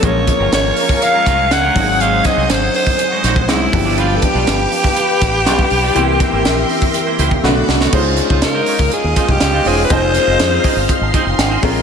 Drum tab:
CC |----------------|----------------|----------------|----------------|
HH |x-x-x-o-x-x-x-o-|x-x-x-o-x-x-x-o-|x-x-x-o-x-x-x-o-|x-x-x-o-x-x-----|
SD |----o-----o-o---|--o-o-----o-o---|----o-----o-o---|--o-o-------o-oo|
BD |o-o----o--o---o-|--o----o---o--o-|--o----o--o--o--|--o----o---o----|

CC |x---------------|----------------|
HH |--x-x-o-x-x-x-o-|x-x-x-o-x-x-x-o-|
SD |--o-o-----o-o---|--o-o-------o---|
BD |o--o---o--oo----|o-----o-o-o---o-|